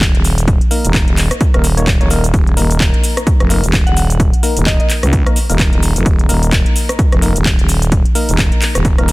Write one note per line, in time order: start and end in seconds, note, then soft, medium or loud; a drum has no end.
0.00 0.12 D#1 loud
0.00 kick loud
0.00 clap loud
0.00 closed hi-hat medium
0.00 shaker soft
0.15 0.59 D#1 loud
0.15 closed hi-hat soft
0.24 open hi-hat loud
0.24 shaker medium
0.38 closed hi-hat medium
0.38 shaker soft
0.48 kick loud
0.48 closed hi-hat medium
0.48 shaker soft
0.61 closed hi-hat soft
0.71 1.51 A#3 medium
0.71 1.51 D#4 medium
0.71 1.51 A#4 medium
0.71 open hi-hat loud
0.71 shaker medium
0.84 1.06 D#1 medium
0.84 closed hi-hat medium
0.84 shaker soft
0.94 kick loud
0.94 clap loud
0.94 closed hi-hat medium
0.94 shaker soft
1.08 1.29 D#1 loud
1.08 closed hi-hat soft
1.17 clap medium
1.17 open hi-hat medium
1.17 shaker medium
1.31 cross-stick medium
1.31 closed hi-hat soft
1.31 shaker soft
1.41 kick loud
1.41 closed hi-hat medium
1.41 shaker soft
1.54 1.99 D#1 loud
1.54 1.66 A#3 medium
1.54 1.66 D#4 medium
1.54 1.66 A#4 medium
1.54 cross-stick medium
1.54 closed hi-hat soft
1.64 open hi-hat loud
1.64 shaker medium
1.77 1.90 A#3 loud
1.77 1.90 D#4 medium
1.77 1.90 C#5 loud
1.77 closed hi-hat soft
1.77 shaker soft
1.87 kick loud
1.87 clap loud
1.87 closed hi-hat medium
1.87 shaker soft
2.01 2.32 D#1 medium
2.01 2.09 A#3 medium
2.01 2.09 D#4 medium
2.01 2.09 C#5 medium
2.01 closed hi-hat soft
2.10 2.26 A#3 loud
2.10 2.26 D#4 medium
2.10 2.26 A#4 loud
2.10 open hi-hat loud
2.10 shaker medium
2.24 closed hi-hat medium
2.24 shaker soft
2.34 2.55 D#1 loud
2.34 kick loud
2.34 closed hi-hat medium
2.34 shaker soft
2.47 closed hi-hat soft
2.57 2.92 D#1 loud
2.57 3.48 A#3 medium
2.57 3.48 D#4 medium
2.57 3.48 A#4 medium
2.57 open hi-hat loud
2.57 shaker medium
2.71 closed hi-hat medium
2.71 shaker soft
2.80 kick loud
2.80 clap loud
2.80 closed hi-hat medium
2.80 shaker soft
2.94 closed hi-hat soft
3.04 open hi-hat loud
3.04 shaker medium
3.17 cross-stick medium
3.17 closed hi-hat medium
3.17 shaker soft
3.27 kick loud
3.27 closed hi-hat medium
3.27 shaker soft
3.40 3.61 F1 loud
3.40 cross-stick medium
3.40 closed hi-hat soft
3.50 3.65 A#3 medium
3.50 3.65 D#4 medium
3.50 3.65 A#4 medium
3.50 open hi-hat loud
3.50 shaker medium
3.63 3.85 D#1 loud
3.63 closed hi-hat medium
3.63 shaker soft
3.73 kick loud
3.73 clap loud
3.73 closed hi-hat medium
3.73 shaker soft
3.87 4.31 D#1 loud
3.87 3.93 F#5 medium
3.87 closed hi-hat soft
3.96 4.05 F#5 medium
3.96 open hi-hat loud
3.96 shaker medium
4.10 closed hi-hat medium
4.10 shaker soft
4.20 kick loud
4.20 closed hi-hat medium
4.20 shaker soft
4.33 closed hi-hat soft
4.43 5.23 A#3 medium
4.43 5.23 D#4 medium
4.43 5.23 A#4 medium
4.43 open hi-hat loud
4.43 shaker medium
4.57 4.78 D#1 medium
4.57 closed hi-hat medium
4.57 shaker soft
4.66 4.75 D#5 medium
4.66 kick loud
4.66 clap loud
4.66 closed hi-hat medium
4.66 shaker soft
4.80 4.86 D#5 medium
4.80 closed hi-hat soft
4.90 clap medium
4.90 open hi-hat medium
4.90 shaker medium
5.03 5.24 C#2 loud
5.03 cross-stick medium
5.03 closed hi-hat medium
5.03 shaker soft
5.13 kick loud
5.13 closed hi-hat medium
5.13 shaker soft
5.26 5.39 A#3 medium
5.26 5.39 D#4 medium
5.26 5.39 A#4 medium
5.26 cross-stick medium
5.26 closed hi-hat soft
5.36 open hi-hat loud
5.36 shaker medium
5.49 5.71 D#1 loud
5.49 6.27 A#3 loud
5.49 6.27 D#4 medium
5.49 6.27 A#4 loud
5.49 closed hi-hat medium
5.49 shaker soft
5.59 kick loud
5.59 clap loud
5.59 closed hi-hat medium
5.59 shaker soft
5.73 5.94 D#1 loud
5.73 closed hi-hat soft
5.83 open hi-hat medium
5.83 shaker medium
5.96 6.04 F1 loud
5.96 closed hi-hat medium
5.96 shaker soft
6.06 6.27 D#1 loud
6.06 kick loud
6.06 closed hi-hat medium
6.06 shaker soft
6.19 closed hi-hat soft
6.29 6.64 D#1 loud
6.29 7.20 A#3 medium
6.29 7.20 D#4 medium
6.29 7.20 A#4 medium
6.29 open hi-hat loud
6.29 shaker medium
6.43 closed hi-hat medium
6.43 shaker soft
6.52 kick loud
6.52 clap loud
6.52 closed hi-hat medium
6.52 shaker soft
6.66 closed hi-hat soft
6.76 open hi-hat medium
6.76 shaker medium
6.89 cross-stick medium
6.89 closed hi-hat medium
6.89 shaker soft
6.99 kick loud
6.99 closed hi-hat medium
6.99 shaker soft
7.12 7.33 F1 loud
7.12 cross-stick medium
7.12 closed hi-hat soft
7.22 7.37 A#3 medium
7.22 7.37 D#4 medium
7.22 7.37 A#4 medium
7.22 open hi-hat loud
7.22 shaker medium
7.36 7.57 D#1 loud
7.36 closed hi-hat medium
7.36 shaker soft
7.45 kick loud
7.45 clap loud
7.45 closed hi-hat medium
7.45 shaker soft
7.59 8.03 D#1 loud
7.59 closed hi-hat soft
7.69 open hi-hat loud
7.69 shaker medium
7.82 closed hi-hat medium
7.82 shaker soft
7.92 kick loud
7.92 closed hi-hat medium
7.92 shaker soft
8.05 closed hi-hat soft
8.15 8.95 A#3 medium
8.15 8.95 D#4 medium
8.15 8.95 A#4 medium
8.15 open hi-hat loud
8.15 shaker medium
8.29 8.50 D#1 medium
8.29 closed hi-hat medium
8.29 shaker soft
8.38 kick loud
8.38 clap loud
8.38 closed hi-hat medium
8.38 shaker soft
8.52 closed hi-hat soft
8.62 clap medium
8.62 open hi-hat medium
8.62 shaker medium
8.75 8.96 D#1 medium
8.75 cross-stick medium
8.75 closed hi-hat medium
8.75 shaker soft
8.85 kick loud
8.85 closed hi-hat medium
8.85 shaker soft
8.98 9.12 D#1 loud
8.98 9.11 A#3 medium
8.98 9.11 D#4 medium
8.98 9.11 A#4 medium
8.98 cross-stick medium
8.98 closed hi-hat soft
9.08 open hi-hat loud
9.08 shaker medium